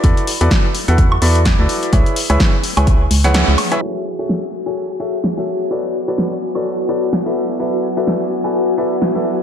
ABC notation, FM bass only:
X:1
M:4/4
L:1/16
Q:"Swing 16ths" 1/4=127
K:F#m
V:1 name="FM bass" clef=bass
E,, z2 E,, z3 E,,3 E,,3 D,, z2 | C,, z2 C,, z3 C,,3 C,,3 C,, z2 | z16 | z16 |
z16 |]